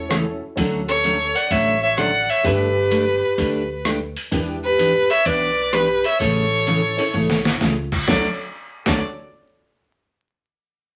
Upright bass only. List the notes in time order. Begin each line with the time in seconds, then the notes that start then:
Already playing: E1
0.57 D2
1.51 A1
2.44 G1
3.38 D2
4.32 E1
5.26 B1
6.20 A1
7.14 B1
7.61 C#2
8.08 D2
8.86 D2